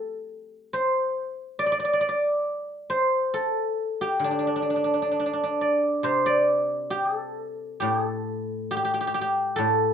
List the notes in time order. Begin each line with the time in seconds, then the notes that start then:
Already playing: G4 A4
0.73 C5
1.59 D5
1.66 D5
1.72 D5
1.80 D5
1.85 D5
1.93 D5
2.01 D5
2.09 D5
2.90 C5
3.34 A4
4.01 G4
4.20 D3
4.24 D4
4.31 D4
4.39 D4
4.47 D4
4.56 D4
4.62 D4
4.70 D4
4.76 D4
4.84 D4
4.94 D4
5.02 D4
5.11 D4
5.20 D4
5.26 D4
5.33 D4
5.44 D4
5.61 D5
6.03 C3 C5
6.26 D5
6.90 G4
7.16 A4
7.80 A2 G4
8.06 A4
8.71 G4
8.77 G4
8.85 G4
8.94 G4
9.01 G4
9.07 G4
9.14 G4
9.21 G4
9.56 A2 A4